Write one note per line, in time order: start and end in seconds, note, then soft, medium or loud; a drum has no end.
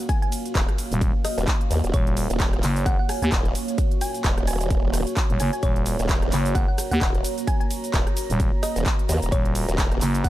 0.00 10.29 A#3 medium
0.00 10.29 F#4 medium
0.00 10.29 C#5 medium
0.00 5.62 F5 medium
0.09 0.18 G#5 medium
0.09 kick loud
0.09 closed hi-hat medium
0.09 ride medium
0.09 shaker soft
0.22 0.29 G#5 medium
0.22 closed hi-hat soft
0.32 open hi-hat loud
0.32 ride medium
0.32 shaker medium
0.46 closed hi-hat medium
0.46 shaker soft
0.55 0.66 D#1 loud
0.55 kick loud
0.55 clap loud
0.55 closed hi-hat medium
0.55 ride medium
0.55 shaker soft
0.69 cross-stick medium
0.69 closed hi-hat soft
0.78 open hi-hat loud
0.78 ride medium
0.78 shaker medium
0.92 1.12 D#1 loud
0.92 closed hi-hat medium
0.92 shaker soft
1.01 kick loud
1.01 closed hi-hat medium
1.01 ride medium
1.01 shaker soft
1.25 1.61 D#5 medium
1.25 cross-stick medium
1.25 open hi-hat loud
1.25 ride medium
1.25 shaker medium
1.38 1.46 D#1 medium
1.38 closed hi-hat medium
1.38 shaker soft
1.47 kick loud
1.47 clap loud
1.47 closed hi-hat medium
1.47 ride medium
1.47 shaker soft
1.61 closed hi-hat soft
1.71 1.82 D#2 loud
1.71 open hi-hat loud
1.71 ride medium
1.71 shaker medium
1.84 1.92 D#1 loud
1.84 closed hi-hat medium
1.84 shaker soft
1.94 2.28 D#1 loud
1.94 2.40 C#5 loud
1.94 kick loud
1.94 closed hi-hat medium
1.94 ride medium
1.94 shaker soft
2.07 closed hi-hat soft
2.17 open hi-hat loud
2.17 ride medium
2.17 shaker medium
2.30 2.61 D#1 loud
2.30 closed hi-hat medium
2.30 shaker soft
2.40 kick loud
2.40 clap loud
2.40 closed hi-hat medium
2.40 ride medium
2.40 shaker soft
2.53 cross-stick medium
2.53 closed hi-hat soft
2.63 2.97 F#1 loud
2.63 clap medium
2.63 open hi-hat loud
2.63 ride medium
2.63 shaker medium
2.76 closed hi-hat medium
2.76 shaker soft
2.86 2.94 F#5 medium
2.86 kick loud
2.86 closed hi-hat medium
2.86 ride medium
2.86 shaker soft
2.99 3.06 F#5 medium
3.09 3.18 G#5 medium
3.09 cross-stick medium
3.09 open hi-hat loud
3.09 ride medium
3.09 shaker medium
3.22 3.31 D#2 loud
3.22 3.29 G#5 medium
3.22 closed hi-hat medium
3.22 shaker soft
3.32 3.54 D#1 loud
3.32 kick loud
3.32 clap loud
3.32 closed hi-hat medium
3.32 ride medium
3.32 shaker soft
3.45 closed hi-hat soft
3.55 open hi-hat loud
3.55 ride medium
3.55 shaker medium
3.68 closed hi-hat medium
3.68 shaker soft
3.78 kick loud
3.78 closed hi-hat medium
3.78 ride medium
3.78 shaker soft
3.91 closed hi-hat soft
4.01 4.17 G#5 medium
4.01 open hi-hat loud
4.01 ride medium
4.01 shaker medium
4.14 closed hi-hat soft
4.14 shaker soft
4.24 4.35 D#1 loud
4.24 kick loud
4.24 clap loud
4.24 closed hi-hat medium
4.24 ride medium
4.24 shaker soft
4.38 4.69 D#1 loud
4.38 cross-stick medium
4.38 closed hi-hat soft
4.47 4.63 G#5 loud
4.47 open hi-hat loud
4.47 ride medium
4.47 shaker medium
4.61 closed hi-hat medium
4.61 shaker soft
4.70 5.05 D#1 loud
4.70 kick loud
4.70 closed hi-hat medium
4.70 ride medium
4.70 shaker soft
4.94 cross-stick medium
4.94 open hi-hat loud
4.94 ride medium
4.94 shaker medium
5.07 closed hi-hat medium
5.07 shaker soft
5.17 kick loud
5.17 clap loud
5.17 closed hi-hat medium
5.17 ride medium
5.17 shaker soft
5.30 5.38 D#1 loud
5.30 closed hi-hat soft
5.40 5.51 F#1 loud
5.40 5.48 G#5 medium
5.40 open hi-hat medium
5.40 ride medium
5.40 shaker medium
5.53 5.59 G#5 medium
5.53 closed hi-hat medium
5.53 shaker soft
5.63 5.97 D#1 loud
5.63 6.09 C#5 medium
5.63 10.29 A#5 loud
5.63 kick loud
5.63 closed hi-hat medium
5.63 ride medium
5.63 shaker soft
5.76 closed hi-hat soft
5.86 open hi-hat loud
5.86 ride medium
5.86 shaker medium
5.99 6.30 D#1 loud
5.99 closed hi-hat medium
5.99 shaker soft
6.09 kick loud
6.09 clap loud
6.09 closed hi-hat medium
6.09 ride medium
6.09 shaker soft
6.22 cross-stick medium
6.22 closed hi-hat soft
6.32 6.66 F#1 loud
6.32 clap medium
6.32 open hi-hat medium
6.32 ride medium
6.32 shaker medium
6.45 closed hi-hat medium
6.45 shaker soft
6.55 6.64 F#5 medium
6.55 kick loud
6.55 closed hi-hat medium
6.55 ride medium
6.55 shaker soft
6.68 6.75 F#5 medium
6.78 cross-stick medium
6.78 open hi-hat loud
6.78 ride medium
6.78 shaker medium
6.91 7.00 D#2 loud
6.91 6.98 F#5 medium
6.91 closed hi-hat medium
6.91 shaker soft
7.01 7.23 D#1 loud
7.01 7.10 F#5 medium
7.01 kick loud
7.01 clap loud
7.01 closed hi-hat medium
7.01 ride medium
7.01 shaker soft
7.15 closed hi-hat soft
7.24 open hi-hat medium
7.24 ride medium
7.24 shaker medium
7.38 closed hi-hat medium
7.38 shaker soft
7.47 7.56 G#5 medium
7.47 kick loud
7.47 closed hi-hat medium
7.47 ride medium
7.47 shaker soft
7.60 7.67 G#5 medium
7.60 closed hi-hat soft
7.71 open hi-hat loud
7.71 ride medium
7.71 shaker medium
7.84 closed hi-hat medium
7.84 shaker soft
7.94 8.05 D#1 loud
7.94 kick loud
7.94 clap loud
7.94 closed hi-hat medium
7.94 ride medium
7.94 shaker soft
8.07 cross-stick medium
8.07 closed hi-hat soft
8.17 open hi-hat medium
8.17 ride medium
8.17 shaker medium
8.30 8.51 D#1 loud
8.30 closed hi-hat medium
8.30 shaker soft
8.40 kick loud
8.40 closed hi-hat medium
8.40 ride medium
8.40 shaker soft
8.63 8.99 D#5 medium
8.63 cross-stick medium
8.63 open hi-hat loud
8.63 ride medium
8.63 shaker medium
8.76 8.84 D#1 loud
8.76 closed hi-hat medium
8.76 shaker soft
8.86 kick loud
8.86 clap loud
8.86 closed hi-hat medium
8.86 ride medium
8.86 shaker soft
8.99 closed hi-hat soft
9.09 9.20 D#2 loud
9.09 open hi-hat medium
9.09 ride medium
9.09 shaker medium
9.22 9.31 D#1 loud
9.22 closed hi-hat medium
9.22 shaker soft
9.32 9.66 D#1 loud
9.32 9.78 C#5 loud
9.32 kick loud
9.32 closed hi-hat medium
9.32 ride medium
9.32 shaker soft
9.45 closed hi-hat soft
9.55 open hi-hat loud
9.55 ride medium
9.55 shaker medium
9.68 10.00 D#1 loud
9.68 closed hi-hat medium
9.68 shaker soft
9.78 kick loud
9.78 clap loud
9.78 closed hi-hat medium
9.78 ride medium
9.78 shaker soft
9.92 cross-stick medium
9.92 closed hi-hat soft
10.01 10.29 F#1 loud
10.01 clap medium
10.01 open hi-hat medium
10.01 ride medium
10.01 shaker medium
10.15 closed hi-hat medium
10.15 shaker soft
10.24 10.29 F#5 medium
10.24 kick loud
10.24 closed hi-hat medium
10.24 ride medium
10.24 shaker soft